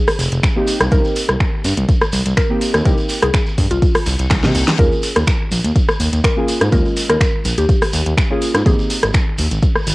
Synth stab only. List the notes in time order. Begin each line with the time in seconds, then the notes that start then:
Already playing: G#3 C4 D#4 G#4
0.56 A#3 C4 D#4 G4
0.91 A#3 C4 D#4 G4
2.49 A#3 C4 D#4 G4
2.84 A#3 C4 D#4 G4
4.43 A#3 C4 D#4 G4
4.78 A#3 C#4 F4 G#4
6.36 A#3 C#4 F4 G#4
6.71 G#3 A#3 C#4 F4
8.30 A#3 C#4 F4 G#4
8.65 A#3 C4 D#4 G4